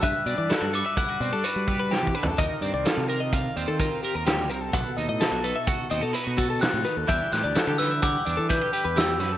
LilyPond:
<<
  \new Staff \with { instrumentName = "Glockenspiel" } { \time 5/4 \key g \major \tempo 4 = 128 fis'''4. d'''8 fis'''2~ fis'''8 r8 | r1 r4 | r1 fis'''4 | g'''8 fis'''4 e'''8 d'''4 g'''4 e'''4 | }
  \new Staff \with { instrumentName = "Clean electric guitar" } { \time 5/4 \key g \major e''8 d''16 d''16 a'8 b'16 e''16 fis''8 d''16 a'16 b'8 g'16 b'16 g'8 b'16 a'16 | ees''8 d''16 d''16 a'8 bes'16 ees''16 f''8 d''16 a'16 bes'8 g'16 bes'16 g'8 bes'16 a'16 | fis''8 dis''16 dis''16 a'8 b'16 e''16 fis''8 dis''16 a'16 b'8 fis'16 a'16 fis'8 b'16 a'16 | e''8 d''16 d''16 a'8 b'16 e''16 fis''8 d''16 a'16 b'8 g'16 b'16 g'8 b'16 a'16 | }
  \new Staff \with { instrumentName = "Clean electric guitar" } { \time 5/4 \key g \major << { b'8 d'8 e'16 fis'16 a'16 b'16 e'16 fis'16 c'16 d'16 fis'8 b'4. | bes'8 c'8 f'8 bes'8 f'8 c'8 f'8 bes'4. | a'8 dis'8 e'16 fis'16 a'8 fis'8 c'16 dis'16 e'16 fis'16 a'4. | <g d' g' b'>8 c'16 d'16 e'16 g'16 b'8 g'8 d'8 e'16 g'16 b'4. | } \\ { g,1 c8 d8 | ees1 d8 c8 | b,1 c8 dis8 | e1 e8 fis8 | } >> }
  \new Staff \with { instrumentName = "Fingered electric bass" } { \clef bass \time 5/4 \key g \major g,16 r16 b,16 e16 r16 g,8 r8. b,16 g16 r16 g4 e16 r16 e,16 | ees,16 r16 g,16 c,16 r16 c4~ c16 ees,16 ees8 r8 ees,8. c,8 | b,,16 r16 dis,16 a,16 r16 b,,8 r8. dis,16 b,16 r16 b,4 a,16 r16 dis,16 | e,16 r16 a,16 d,16 r16 d4~ d16 e,16 e8 r8 e,8. fis,8 | }
  \new DrumStaff \with { instrumentName = "Drums" } \drummode { \time 5/4 <hh bd>8 hh8 <hh sn>8 hh8 <hh bd>8 hh8 hh8 <hh bd>8 \tuplet 3/2 { sn8 bd8 tomfh8 } | <hh bd>8 hh8 <hh sn>8 hh8 <hh bd>8 hh8 <hh bd>8 hh8 <hh sn>8 hh8 | <hh bd>8 hh8 <hh sn>8 hh8 <hh bd>8 hh8 hh8 <hh bd>8 <hh sn>8 hh8 | <hh bd>8 <hh sn>8 <hh sn>8 <hh sn>8 <hh bd>8 hh8 <hh bd sn>8 hh8 <hh sn>8 <hh sn>8 | }
>>